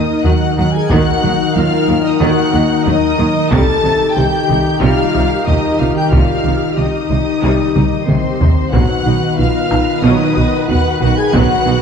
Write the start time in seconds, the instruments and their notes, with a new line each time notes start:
Already playing: analog synth pad D#3 D#4 A#4 D#5, trombone section D#3 D#4, synth arpeggio sound A#3, french horn section D#4, viola section D#4, violin section D#5 D#6, impact
0.25 double bass section D#2, cello section D#3, synth arpeggio sound F#3, viola section F#3, french horn section F#4, violin section F#5 F#6, taiko low
0.58 double bass section D#2, cello section D#3, synth arpeggio sound F#3, viola section A#3, french horn section F#4, violin section F#5 F#6
0.74 french horn section G#4, violin section G#5 G#6
0.90 double bass section D#2, synth arpeggio sound D#3, cello section D#3, viola section D#3, french horn section F#4, violin section F#5 F#6, taiko
1.23 double bass section D#2, cello section D#3, synth arpeggio sound F#3, viola section A#3
1.55 double bass section D#2, cello section D#3, synth arpeggio sound F#3, viola section F#3, french horn section F4, violin section F5 F6
1.88 double bass section D#2, cello section D#3, synth arpeggio sound F#3, viola section A#3
2.04 french horn section D#4, violin section D#5 D#6
2.21 double bass section D#2, synth arpeggio sound D#3, viola section D#3, cello section D#3, french horn section F#4, violin section F#5 F#6
2.53 double bass section D#2, cello section D#3, synth arpeggio sound A#3, viola section A#3
2.86 double bass section D#2, cello section D#3, synth arpeggio sound F#3, viola section F#3, french horn section D#4, violin section D#5 D#6, taiko low
3.18 double bass section D#2, cello section D#3, synth arpeggio sound F#3, viola section A#3
3.51 double bass section C2, synth arpeggio sound C3, cello section C3, analog synth pad D#3 D#4 G4 D#5, trombone section D#3 D#4, viola section G3 G4, french horn section A4, violin section A5 A6, taiko
3.83 double bass section C2, cello section C3, synth arpeggio sound D#3, viola section D#4
4.16 double bass section C2, cello section C3, synth arpeggio sound D#3, viola section C4, french horn section G4, violin section G5 G6
4.49 double bass section C2, cello section C3, synth arpeggio sound D#3, viola section D#4
4.81 double bass section C2, synth arpeggio sound C3, cello section C3, viola section G3, french horn section F4, violin section F5 F6
5.14 double bass section C2, cello section C3, synth arpeggio sound G3, viola section D#4
5.47 double bass section C2, cello section C3, synth arpeggio sound D#3, viola section C4, french horn section D#4, violin section D#5 D#6, taiko low
5.79 double bass section C2, cello section C3, synth arpeggio sound D#3, viola section D#4, french horn section F4, violin section F5 F6
5.96 french horn section G4, violin section G5 G6
6.12 double bass section C2, synth arpeggio sound C3, cello section C3, viola section G3, french horn section F4, violin section F5 F6, taiko
6.45 double bass section C2, cello section C3, synth arpeggio sound D#3, viola section D#4
6.77 double bass section C2, cello section C3, synth arpeggio sound D#3, viola section C4, french horn section D#4, violin section D#5 D#6
7.10 double bass section C2, cello section C3, synth arpeggio sound D#3, viola section D#4
7.43 double bass section C2, cello section C3, synth arpeggio sound C3, viola section G3
7.75 double bass section C2, cello section C3, synth arpeggio sound G3, viola section D#4, taiko mid
8.07 double bass section C2, cello section C3, synth arpeggio sound D#3, viola section C4, french horn section C4, violin section C5 C6, taiko mid
8.41 double bass section C2, cello section C3, synth arpeggio sound D#3, viola section D#4, taiko low
8.72 double bass section B1, cello section B2, analog synth pad D#3 D#4 B4 D#5, trombone section D#3 B3, viola section F#3 B4, synth arpeggio sound B3, french horn section F#4, violin section F#5 F#6, taiko
9.06 double bass section B1, cello section B2, viola section D#4, synth arpeggio sound D#4
9.38 double bass section B1, cello section B2, viola section B3, synth arpeggio sound D#4, french horn section F4, violin section F5 F6
9.70 double bass section B1, cello section B2, viola section D#4, synth arpeggio sound D#4, taiko rim
10.03 double bass section B1, cello section B2, viola section F#3, synth arpeggio sound B3, french horn section D#4, violin section D#5 D#6
10.36 double bass section B1, cello section B2, viola section D#4, synth arpeggio sound F#4
10.68 double bass section B1, cello section B2, viola section B3, synth arpeggio sound D#4, french horn section F#4, violin section F#5 F#6, taiko low
11.01 double bass section B1, cello section B2, synth arpeggio sound D#4, viola section D#4, french horn section F#4, violin section F#5 F#6
11.17 french horn section G#4, violin section G#5 G#6
11.33 double bass section B1, cello section B2, viola section F#3, synth arpeggio sound B3, french horn section F#4, violin section F#5 F#6, taiko
11.66 double bass section B1, cello section B2, synth arpeggio sound D#4, viola section D#4